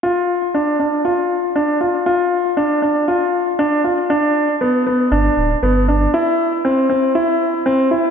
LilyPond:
<<
  \new Staff \with { instrumentName = "Grand piano" } { \time 4/4 \key d \dorian \tempo 4 = 118 f'4 d'8 d'8 f'4 d'8 f'8 | f'4 d'8 d'8 f'4 d'8 f'8 | d'4 b8 b8 d'4 b8 d'8 | e'4 c'8 c'8 e'4 c'8 e'8 | }
  \new Staff \with { instrumentName = "Sub bass" } { \clef bass \time 4/4 \key d \dorian r1 | r1 | r2 g,,8 d,,8 g,,4 | r1 | }
>>